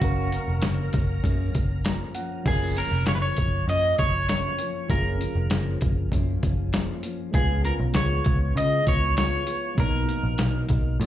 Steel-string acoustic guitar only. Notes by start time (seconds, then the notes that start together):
0.01 F#2 C#3 A#3 C#4
0.32 A#3 C#4
0.63 C#3 A#3 C#4
0.93 A#3 C#4
1.23 F#2 C#3 A#3 C#4
1.53 A#3 C#4
1.84 C#3 F3 A#3 C#4
2.14 F3 A#3 C#4
2.45 F#2 C#3 F3 A#3 C#4
2.76 F3 A#3 C#4
3.06 F#2 C#3 F3 A#3 C#4
3.37 F3 A#3 C#4
3.67 C#3 F3 A#3 C#4
3.98 F3 A#3 C#4
4.28 F#2 C#3 F3 A#3 C#4
4.58 F3 A#3 C#4
4.89 F#2 C#3 F3 A#3 C#4
5.19 F3 A#3 C#4
5.50 F#2 C#3 F3 A#3 C#4
5.80 F3 A#3 C#4
6.11 C#3 F3 A#3 C#4
6.42 F3 A#3 C#4
6.73 F#2 C#3 F3 A#3 C#4
7.03 F3 A#3 C#4
7.34 C#3 G#3 B3 F4
7.64 G#3 B3 F4
7.95 C#3 G#3 B3 F4
8.25 G#3 B3 F4
8.56 C#3 G#3 B3 F4
8.86 G#3 B3 F4
9.16 C#3 G#3 B3 F4
9.46 G#3 B3 F4
9.77 B2 F#3 A#3 D#4
10.08 F#3 A#3 D#4
10.39 B2 F#3 A#3 D#4
10.70 F#3 A#3
10.99 B2 F#3 A#3 D#4